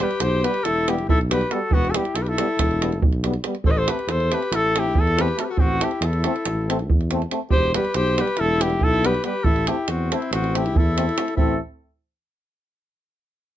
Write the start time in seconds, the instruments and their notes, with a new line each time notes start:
0.00 euphonium G3, alto saxophone G4, flugelhorn B4
0.11 davul high
0.20 tuba B1, alto saxophone G4, flugelhorn C5, davul high
0.42 euphonium G3, trombone B3, alto saxophone G4, flugelhorn B4, davul high
0.54 davul high
0.64 tuba E1, alto saxophone E4, flugelhorn A4, davul high
0.88 euphonium G3, trombone B3, alto saxophone E4, flugelhorn G4, davul high
0.99 davul high
1.08 tuba B1, alto saxophone E4, flugelhorn A4, davul low
1.21 davul high
1.30 euphonium G3, trombone B3, alto saxophone G4, flugelhorn B4, davul high
1.41 davul high
1.51 euphonium G3, trombone B3, alto saxophone F#4, flugelhorn A4, davul high
1.70 tuba E1, alto saxophone B3, flugelhorn F#4, davul low
1.85 alto saxophone F#4, davul high
1.91 trombone B3, alto saxophone E4, flugelhorn A4, davul high
1.95 euphonium G3, flugelhorn G4
2.05 davul high
2.14 tuba B1, alto saxophone E4, flugelhorn A4, davul high
2.22 alto saxophone G4, flugelhorn B4
2.26 alto saxophone E4, flugelhorn A4, davul high
2.38 euphonium G3, trombone B3, davul high
2.57 tuba E1, davul high, davul low
2.71 davul high
2.82 euphonium G3, trombone B3, davul high
2.92 davul high
3.02 tuba B1, davul low
3.13 davul high
3.24 euphonium G3, trombone B3, davul high
3.34 davul high
3.44 euphonium G3, trombone B3, davul high
3.55 davul high
3.63 tuba A1, alto saxophone A4, flugelhorn C5, davul low
3.68 alto saxophone B4, flugelhorn D#5
3.76 alto saxophone A4, flugelhorn C5
3.87 euphonium A3, trombone C4, alto saxophone G4, flugelhorn B4, davul high
3.99 davul high
4.07 tuba E2, alto saxophone A4, flugelhorn C5, davul high
4.20 davul high
4.31 euphonium A3, trombone C4, alto saxophone G4, flugelhorn B4, davul high
4.43 davul high
4.51 tuba A1, alto saxophone E4, davul high
4.55 flugelhorn A4
4.76 euphonium A3, trombone C4, alto saxophone E4, flugelhorn G4, davul high
4.95 tuba E2, alto saxophone E4, davul low
4.99 flugelhorn A4
5.07 davul high
5.18 euphonium A3, trombone C4, alto saxophone G4, flugelhorn B4, davul high
5.28 davul high
5.37 euphonium A3, trombone C4, alto saxophone F#4, davul high
5.41 alto saxophone G4, flugelhorn A4 B4
5.49 alto saxophone F#4, flugelhorn A4
5.57 tuba A1, alto saxophone C4, flugelhorn F#4, davul low
5.80 euphonium A3, trombone C4, alto saxophone E4, flugelhorn G4, davul high
5.91 davul high
6.01 tuba E2, alto saxophone E4, flugelhorn A4, davul high
6.13 davul high
6.24 euphonium A3, trombone C4, davul high
6.36 davul high
6.45 tuba A1, davul high
6.69 euphonium A3, trombone C4, davul high
6.79 davul high
6.88 tuba E2, davul low
7.01 davul high
7.11 euphonium A3, trombone C4, davul high
7.22 davul high
7.31 euphonium A3, trombone C4, davul high
7.51 tuba E1, alto saxophone G4, flugelhorn C5, davul low
7.74 euphonium G3, trombone B3, alto saxophone G4, flugelhorn B4, davul high
7.85 davul high
7.94 tuba B1, alto saxophone G4, flugelhorn C5, davul high
8.07 davul high
8.17 euphonium G3, trombone B3, alto saxophone G4, davul high
8.21 flugelhorn B4
8.27 davul high
8.37 tuba E1, alto saxophone E4, flugelhorn A4, davul high
8.61 euphonium G3, trombone B3, alto saxophone E4, flugelhorn G4, davul high
8.70 davul high
8.81 tuba B1, alto saxophone E4, flugelhorn A4, davul low
8.94 davul high
9.04 euphonium G3, trombone B3, alto saxophone G4, flugelhorn B4, davul high
9.15 davul high
9.24 euphonium G3, trombone B3, alto saxophone G4, flugelhorn B4, davul high
9.44 tuba A1, alto saxophone E4, flugelhorn A4, davul low
9.56 davul high
9.67 euphonium A3, trombone C4, alto saxophone E4, flugelhorn G4, davul high
9.88 tuba E2, alto saxophone C4, flugelhorn F#4, davul high
10.10 euphonium A3, trombone C4, alto saxophone C4, flugelhorn E4, davul high
10.22 davul high
10.31 tuba A1, alto saxophone C4, flugelhorn F#4, davul high
10.44 davul high
10.54 euphonium A3, trombone C4, alto saxophone E4, flugelhorn G4, davul high
10.66 davul high
10.74 tuba E2, alto saxophone E4, flugelhorn A4, davul low
10.97 euphonium A3, trombone C4, davul high
11.09 davul high
11.17 euphonium A3, trombone C4, davul high
11.28 davul high
11.36 tuba A1, euphonium A3, trombone C4, alto saxophone E4, flugelhorn A4, davul low